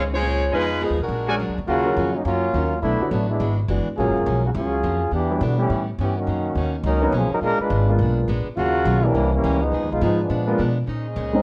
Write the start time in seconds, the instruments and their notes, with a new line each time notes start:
Already playing: upright bass C#2, steel-string acoustic guitar A#2 D#3 G#3 C#4
0.13 upright piano G#3 C4 C#4 F4, saxophone section G#3 F4 C5 C#5
0.22 steel-string acoustic guitar A#2 D#3 G#3 C#4
0.51 upright bass F2, steel-string acoustic guitar F3 B3 D#4 G#4, upright piano G#3 B3 D#4 F4, saxophone section G#3 D#4 F4 B4, trumpet section F4 B4 D#5 G#5
0.81 steel-string acoustic guitar F3 B3 D#4 G#4, saxophone section F3 B3 D#4 G#4
0.90 upright bass D#2
1.00 upright bass B1, saxophone section G#3 D4 F#4 A#4
1.08 upright bass A#1, steel-string acoustic guitar A#2 F#3 G#3
1.13 steel-string acoustic guitar D4
1.27 upright piano G#3 C#4 D4 G#4, trumpet section F#4 A#4 D5 G#5
1.39 steel-string acoustic guitar A#2 F#3 G#3 D4
1.49 upright bass C#2
1.58 upright bass D2
1.67 upright bass D#2, trombone section C#3 A#3 F4 F#4, steel-string acoustic guitar D#3 F#3 C#4 F4
1.85 upright piano D#3 F#3 A#3 C#4 F4
1.96 upright bass F2, steel-string acoustic guitar D#3 F#3 C#4 F4
2.13 trombone section F#3 A#3 C#4 D#4
2.23 upright bass F#2, steel-string acoustic guitar D#3 F#3, trombone section F#3 A#3 C#4 F4
2.28 steel-string acoustic guitar C#4 F4
2.54 upright bass D#2, upright piano D#3 F#3 A#3 C#4 F4, steel-string acoustic guitar D#3 F#3 C#4 F4
2.82 upright bass B1, steel-string acoustic guitar B2 F#3 A3 D4, trombone section A3 B3 D4 E4
3.01 upright piano D3 A3 B3 C#4 F#4, muted upright bass stroke
3.11 upright bass A1, steel-string acoustic guitar B2 F#3 A3 D4, trombone section F#3 A3 B3 D4
3.29 trombone section G#3 B3 D4 E4
3.40 upright bass G#1, steel-string acoustic guitar E3 G#3 D4 F#4
3.69 upright bass F#1, steel-string acoustic guitar E3 G#3 D4 F#4, upright piano E3 G#3 B3 D4 F#4
3.87 muted upright bass stroke
3.97 upright bass A#1, steel-string acoustic guitar F#2 F3 A#3 C#4, trombone section F#3 C#4 F4 G#4, upright piano F#3 G#3 A#3 C#4 F4
4.08 upright bass F#1
4.18 upright bass F1
4.26 upright bass B1, steel-string acoustic guitar F#2 F3 A#3 C#4
4.45 trombone section C#3 F3 A#3 F#4
4.55 upright bass C#2, steel-string acoustic guitar F#2 F3 A#3 C#4, trombone section F#3 C#4 F4 G#4
4.83 upright bass F2, steel-string acoustic guitar F#2 F3 A#3 C#4
5.11 upright bass E2, steel-string acoustic guitar E3 B3 D4 G4, trombone section E3 B3 D4 G4
5.31 upright piano F#3 G3 B3 D4 E4
5.41 upright bass B2, trombone section D3 G3 B3 F#4, steel-string acoustic guitar E3 B3 D4 G4
5.58 trombone section E3 B3 C#4 G4, upright piano G3 A3 B3 C#4 E4
5.70 upright bass A2, steel-string acoustic guitar A2 G3 B3 C#4
5.99 upright bass G2, steel-string acoustic guitar A2 G3 B3 C#4, trombone section E3 B3 C#4 G4
6.18 trombone section D#3 A#3 C#4 F#4
6.27 upright bass F#2, steel-string acoustic guitar B2 D#3 A#3 C#4
6.55 upright bass D#2, steel-string acoustic guitar B2 D#3 A#3 C#4
6.84 upright bass C#2, steel-string acoustic guitar B2 D#3 A#3 C#4, trombone section F#3 C#4 D#4 A#4
7.02 upright piano F#3 A#3 B3 C#4 D#4
7.12 upright bass B1, steel-string acoustic guitar B2 D#3 A#3 C#4, trombone section F3 A#3 C#4 G#4
7.30 trombone section F#3 C#4 D#4 A#4, muted upright bass stroke
7.41 upright bass A#1, steel-string acoustic guitar A#2 G#3 B3 D4, trombone section G#3 D4 F4 A#4
7.59 trombone section G#3 D4 F4 B4, muted upright bass stroke
7.70 upright bass G#1, steel-string acoustic guitar A#2 G#3 B3 D4
7.89 upright piano G#3 A#3 B3 D4 F4
7.99 upright bass B1, steel-string acoustic guitar A#2 G#3 B3 D4
8.28 upright bass A#1, steel-string acoustic guitar A#2 G#3 B3 D4
8.46 muted upright bass stroke
8.56 upright bass D#2, trombone section C#3 A#3 F4 F#4, steel-string acoustic guitar D#3 F#3 C#4 F4
8.85 upright bass B1, steel-string acoustic guitar D#3 F#3 C#4 F4
9.03 trombone section E3 G3 A#3 D4, upright piano G3 A#3 C4 C#4 E4
9.15 upright bass C2, steel-string acoustic guitar C3 E3 A#3 C#4
9.33 trombone section E3 G3 A#3 C#4
9.44 upright bass C#2, steel-string acoustic guitar C3 E3 A#3 C#4
9.62 trombone section F3 G#3 B3 D#4
9.72 upright bass F2, steel-string acoustic guitar F3 B3 D#4 G#4
9.82 upright bass D#2
9.92 upright bass B1, trombone section G#3 B3 D#4 F4
10.01 upright bass G#2, steel-string acoustic guitar F3 B3 D#4 G#4, upright piano F3 G#3 B3 D#4 F4, trombone section F3 G#3 B3 D#4
10.20 trombone section F3 G#3 B3 D4
10.29 steel-string acoustic guitar A#2 G#3 B3 D4, upright bass A#2
10.47 upright piano G#3 A#3 B3 D4 F4
10.58 steel-string acoustic guitar A#2 G#3 B3 D4, upright bass B2
10.86 steel-string acoustic guitar A#2 G#3 C#4 D#4, upright bass A#2, saxophone section C#3 G#4 C5 D#5
11.16 upright bass C#2, steel-string acoustic guitar A#2 G#3 C#4 D#4
11.33 upright piano G#3 C4 C#4 D#4